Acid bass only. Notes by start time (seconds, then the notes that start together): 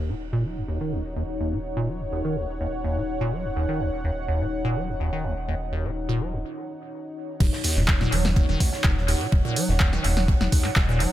Already playing: D#2
0.09 A#2
0.33 A#2
0.44 F#3
0.57 D#2
0.68 D#2
0.81 D#3
0.92 C#2
1.16 D#2
1.40 D#2
1.53 A#2
1.77 A#2
1.88 F#3
2.01 D#2
2.12 D#2
2.25 D#3
2.36 C#2
2.60 D#2
2.84 D#2
2.97 A#2
3.21 A#2
3.32 F#3
3.45 D#2
3.56 D#2
3.69 D#3
3.80 C#2
4.04 D#2
4.28 D#2
4.41 A#2
4.65 A#2
4.76 F#3
4.89 D#2
5.00 D#2
5.13 D#3
5.24 C#2
5.48 D#2
5.72 D#2
5.85 A#2
6.09 A#2
6.20 F#3
6.33 D#2
7.40 D#2
7.64 D#2
7.77 A#2
8.01 A#2
8.12 F#3
8.25 D#2
8.36 D#2
8.49 D#3
8.60 C#2
8.84 D#2
9.08 D#2
9.21 A#2
9.45 A#2
9.56 F#3
9.69 D#2
9.80 D#2
9.93 D#3
10.04 C#2
10.28 D#2
10.52 D#2
10.65 A#2
10.89 A#2
11.00 F#3